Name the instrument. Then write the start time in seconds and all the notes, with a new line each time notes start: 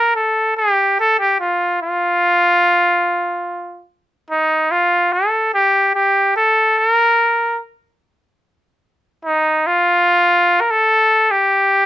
cornet
Already playing: A#4
0.16 A4
0.57 G4
1.00 A4
1.20 G4
1.40 F4
1.82 F4
4.30 D#4
4.71 F4
5.13 A4
5.54 G4
5.95 G4
6.37 A4
6.78 A#4
9.25 D#4
9.67 F4
10.61 A#4
10.71 A4
11.31 G4